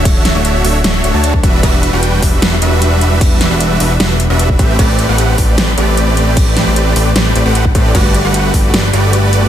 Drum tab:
CC |x---------------|x---------------|x---------------|x---------------|
HH |x-x-x-o-x-x-x-x-|x-x-x-o-x-x-x-x-|x-x-x-o-x-x-x-x-|x-x-x-o-x-x-x-x-|
SD |--o-----o-------|--------o-------|--o-----o-------|--------o-------|
BD |o------------oo-|o-----o---------|o------------oo-|o-----o---------|

CC |x---------------|x---------------|
HH |x-x-x-o-x-x-x-x-|x-x-x-o-x-x-x-x-|
SD |--o-----o-------|--------o-------|
BD |o------------oo-|o-----o---------|